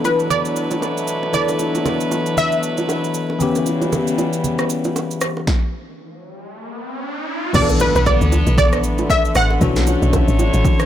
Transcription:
0.00 3.36 B2 medium
0.00 1.29 E3 medium
0.00 3.36 F#3 medium
0.00 3.36 A3 medium
0.00 1.29 B3 medium
0.00 1.30 D4 medium
0.00 3.36 D4 medium
0.00 1.30 E4 medium
0.00 5.43 E4 medium
0.00 1.31 A4 medium
0.00 5.43 B4 medium
0.04 0.29 B4 medium
0.04 low bongo medium
0.04 shaker medium
0.19 shaker soft
0.30 1.33 D5 loud
0.30 low conga medium
0.30 shaker medium
0.45 shaker soft
0.56 shaker medium
0.71 low bongo medium
0.71 shaker soft
0.82 high bongo medium
0.82 shaker medium
0.98 shaker soft
1.07 shaker loud
1.23 high bongo soft
1.33 3.36 E3 medium
1.33 3.36 B3 medium
1.33 3.37 D4 medium
1.33 3.37 E4 medium
1.33 3.37 A4 medium
1.33 2.33 D5 loud
1.33 low conga medium
1.33 shaker medium
1.48 high bongo medium
1.48 shaker medium
1.59 low bongo medium
1.59 shaker loud
1.75 low bongo medium
1.75 shaker medium
1.86 high bongo medium
1.86 low conga medium
1.86 shaker medium
2.01 shaker medium
2.11 low bongo medium
2.11 shaker medium
2.26 shaker soft
2.37 3.11 E5 loud
2.37 low conga medium
2.37 shaker medium
2.52 shaker soft
2.63 shaker loud
2.77 low bongo medium
2.77 shaker medium
2.89 high bongo medium
2.89 shaker medium
3.04 shaker medium
3.14 shaker loud
3.30 high bongo soft
3.39 5.45 C#3 medium
3.39 5.43 E3 medium
3.39 5.45 G3 medium
3.39 5.43 B3 medium
3.39 5.45 B3 medium
3.39 5.44 C#4 medium
3.39 5.44 G4 medium
3.39 low conga medium
3.39 shaker medium
3.55 high bongo medium
3.55 shaker medium
3.66 low bongo medium
3.66 shaker loud
3.82 low bongo medium
3.82 shaker soft
3.93 high bongo medium
3.93 low conga medium
3.93 shaker medium
4.07 shaker medium
4.18 low bongo medium
4.18 shaker medium
4.33 shaker medium
4.44 low conga medium
4.44 shaker medium
4.59 cross-stick medium
4.59 shaker soft
4.70 shaker medium
4.84 low bongo medium
4.84 shaker medium
4.96 high bongo medium
4.96 shaker medium
5.11 shaker medium
5.21 cross-stick loud
5.21 shaker loud
5.37 high bongo soft
5.47 kick loud
5.47 snare medium
5.47 riser medium
7.53 7.90 B1 loud
7.53 10.86 D3 medium
7.53 9.57 E3 medium
7.53 10.86 A3 medium
7.53 9.57 B3 medium
7.53 9.59 B3 medium
7.53 9.58 D4 medium
7.53 7.62 G4 medium
7.53 7.81 D5 loud
7.53 kick loud
7.53 crash medium
7.53 impact medium
7.53 low conga medium
7.53 shaker medium
7.62 9.61 A4 medium
7.69 high bongo medium
7.69 shaker medium
7.80 7.95 B4 medium
7.80 low bongo medium
7.80 shaker loud
7.95 8.18 B1 medium
7.95 8.01 B4 medium
7.95 shaker medium
8.06 8.57 D5 medium
8.06 kick medium
8.06 high bongo medium
8.06 low conga medium
8.06 shaker medium
8.21 8.44 D2 medium
8.21 shaker medium
8.32 low bongo medium
8.32 shaker medium
8.47 8.85 B1 loud
8.47 shaker medium
8.58 9.11 D5 loud
8.58 kick loud
8.58 low conga medium
8.58 shaker medium
8.73 cross-stick medium
8.73 shaker medium
8.84 9.29 A1 loud
8.84 shaker medium
8.98 low bongo medium
8.98 shaker medium
9.10 9.37 E5 loud
9.10 kick loud
9.10 high bongo medium
9.10 shaker medium
9.25 shaker medium
9.35 9.58 A1 medium
9.35 10.86 F#5 loud
9.35 cross-stick loud
9.35 shaker loud
9.51 high bongo soft
9.60 9.97 B1 loud
9.60 10.86 E3 medium
9.60 10.86 C#4 medium
9.60 10.86 D4 medium
9.60 10.86 F#4 medium
9.60 10.86 C#5 medium
9.60 kick loud
9.60 low conga medium
9.60 shaker medium
9.76 snare medium
9.76 high bongo medium
9.76 shaker medium
9.87 low bongo medium
9.87 shaker loud
10.02 10.25 B1 medium
10.02 shaker medium
10.13 kick medium
10.13 high bongo medium
10.13 low conga medium
10.13 shaker medium
10.28 10.50 A1 loud
10.28 shaker medium
10.39 low bongo medium
10.39 shaker medium
10.54 10.63 A1 medium
10.54 shaker medium
10.65 kick loud
10.65 low conga medium
10.65 shaker medium
10.79 cross-stick medium
10.79 shaker medium

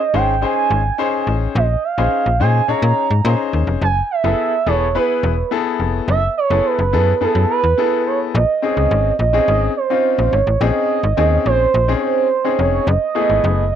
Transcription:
0.00 0.15 D#5 loud
0.14 0.45 G#1 medium
0.14 0.33 C#4 medium
0.14 0.33 D#4 medium
0.14 0.33 G#4 medium
0.14 0.33 C5 medium
0.14 0.45 G5 loud
0.42 0.80 C#4 medium
0.42 0.80 D#4 medium
0.42 0.80 G#4 medium
0.42 0.80 C5 medium
0.42 1.28 G#5 loud
0.70 0.91 G#1 medium
0.98 1.64 C#4 medium
0.98 1.65 D#4 medium
0.98 1.65 G#4 medium
0.98 1.65 C5 medium
1.27 1.48 A1 medium
1.55 1.76 A#1 loud
1.55 1.86 D#5 medium
1.84 2.40 F5 loud
1.98 2.08 A#1 medium
1.98 2.26 C#4 medium
1.98 2.26 D#4 medium
1.98 2.26 G#4 medium
1.98 2.26 C5 medium
2.26 2.42 A#1 medium
2.40 2.61 A#2 loud
2.40 2.59 C#4 medium
2.40 2.59 D#4 medium
2.40 2.59 G#4 medium
2.40 2.59 C5 medium
2.40 2.67 G#5 loud
2.68 2.74 A#2 soft
2.68 3.06 C#4 medium
2.68 3.06 D#4 medium
2.68 3.06 G#4 medium
2.68 3.06 C#5 medium
2.68 3.50 A#5 loud
2.82 2.93 A#2 loud
3.11 3.21 G#2 medium
3.25 3.35 A#2 loud
3.25 3.82 C#4 medium
3.25 3.82 D#4 medium
3.25 3.82 G#4 medium
3.25 3.82 C5 medium
3.53 3.64 D#2 medium
3.67 3.78 F1 medium
3.82 4.02 F#1 loud
3.82 4.09 G#5 loud
4.11 4.69 E5 loud
4.24 4.35 F#1 loud
4.24 4.52 B3 medium
4.24 4.52 E4 medium
4.24 4.52 G#4 medium
4.24 4.53 A4 medium
4.66 4.98 E1 medium
4.66 4.85 B3 medium
4.66 4.86 E4 medium
4.66 4.86 G#4 medium
4.66 4.86 A4 medium
4.66 4.97 C#5 loud
4.95 5.32 B3 medium
4.95 5.33 E4 medium
4.95 5.33 G#4 medium
4.95 5.33 B4 medium
4.95 5.52 B4 medium
5.23 5.44 E1 loud
5.51 6.17 B3 medium
5.51 6.17 E4 medium
5.51 6.17 G#4 medium
5.51 6.18 A4 medium
5.80 6.00 F1 medium
6.08 6.29 F#1 loud
6.08 6.35 E5 loud
6.37 6.67 C#5 loud
6.50 6.61 F#1 loud
6.50 6.79 B3 medium
6.50 6.79 E4 medium
6.50 6.79 G#4 medium
6.50 6.79 A4 medium
6.66 7.22 B4 loud
6.79 6.94 F#1 loud
6.93 7.14 F#2 loud
6.93 7.12 B3 medium
6.93 7.12 E4 medium
6.93 7.12 G#4 medium
6.93 7.12 A4 medium
7.21 7.27 F#2 soft
7.21 7.59 B3 medium
7.21 7.59 E4 medium
7.21 7.59 G#4 medium
7.21 7.59 A4 medium
7.21 7.48 A4 medium
7.35 7.46 F#2 medium
7.50 8.03 B4 medium
7.64 7.74 E2 medium
7.78 8.34 B3 medium
7.78 8.35 E4 medium
7.78 8.35 G#4 medium
7.78 8.35 A4 medium
8.06 8.19 C#5 medium
8.35 8.45 A#1 loud
8.35 9.16 D#5 loud
8.62 9.10 C4 medium
8.62 9.10 C#4 medium
8.62 9.10 D#4 medium
8.62 9.10 G#4 medium
8.77 8.87 C#2 medium
8.91 9.12 G#1 loud
9.19 9.40 A#1 loud
9.19 9.72 D#5 loud
9.33 9.71 C4 medium
9.33 9.71 C#4 medium
9.33 9.71 D#4 medium
9.33 9.72 G#4 medium
9.48 9.69 G#1 loud
9.77 10.34 C5 medium
9.90 10.37 C4 medium
9.90 10.37 C#4 medium
9.90 10.37 D#4 medium
9.90 10.38 F4 medium
10.19 10.29 A#1 medium
10.33 10.43 G#1 loud
10.33 10.62 C#5 medium
10.47 10.57 A1 medium
10.61 10.71 A#1 loud
10.61 10.99 C4 medium
10.61 10.99 C#4 medium
10.61 10.99 D#4 medium
10.61 10.99 G#4 medium
10.61 11.45 D#5 loud
11.03 11.14 G#1 loud
11.17 11.38 D#2 medium
11.17 11.64 C4 medium
11.17 11.65 C#4 medium
11.17 11.65 D#4 medium
11.17 11.65 G#4 medium
11.46 11.67 A#1 medium
11.46 11.92 C5 loud
11.74 11.95 A#1 loud
11.88 12.26 C4 medium
11.88 12.26 C#4 medium
11.88 12.26 D#4 medium
11.88 12.26 G#4 medium
11.96 12.03 C#5 medium
12.02 12.60 C5 loud
12.44 12.87 C4 medium
12.44 12.87 C#4 medium
12.44 12.87 D#4 medium
12.44 12.88 G#4 medium
12.59 12.80 F1 medium
12.59 12.88 C#5 medium
12.87 12.98 F#1 loud
12.87 13.71 D#5 loud
13.15 13.62 A3 medium
13.15 13.63 B3 medium
13.15 13.63 E4 medium
13.15 13.63 G#4 medium
13.30 13.40 G#1 medium
13.44 13.74 F#1 loud
13.72 13.75 G#1 medium
13.72 13.75 D#5 loud

